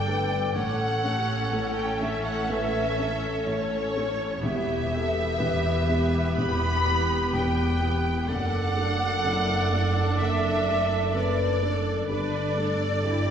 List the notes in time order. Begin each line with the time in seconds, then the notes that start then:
Already playing: G1 G2 A3 D4 A4 D5 G5
0.07 A3 D4 A4 B4
0.55 A1 A2 C#4 A4 C#5 F#5
1.03 A3 C#4 G4 A4
1.52 A1 A2 A4
1.76 G5
2.01 A3 C#4 A4 E5
2.25 F#5
2.49 A1 A2 B4 E5
2.98 A3 C#4 A4
3.45 A1 A2 C#5
3.96 A3 C#4 A4
4.41 E1 E2 B3 G4 E5
4.90 B3 E4 G4 A4
5.37 E1 E2 B4
5.86 B3 E4 G4
6.36 E1 E2 E4 B5
6.85 B3 E4 G4
7.33 E1 E2 G4 G5
7.81 B3 E4 G4
8.27 F#1 F#2 D4 A4 D5 F#5
8.75 A3 D4 F#4 A4
9.24 F#1 F#2 E4
9.71 A3 D4 A4
10.20 F#1 F#2 E5
10.67 A3 D4 A4
11.14 F#1 F#2 B4 D5
11.62 A3 D4 A4
12.09 G1 G2 D4 A4 B4 D5
12.56 A3 D4 A4
13.04 G1 G2 E4 G4